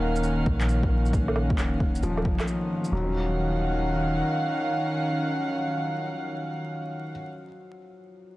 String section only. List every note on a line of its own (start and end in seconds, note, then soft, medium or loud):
0.00 2.90 D#3 medium
0.00 2.92 C#4 medium
0.00 2.92 F5 medium
0.00 2.92 F#5 medium
2.91 7.10 D#3 medium
3.01 7.19 C#4 medium
3.07 7.26 F5 medium
3.12 7.26 F#5 medium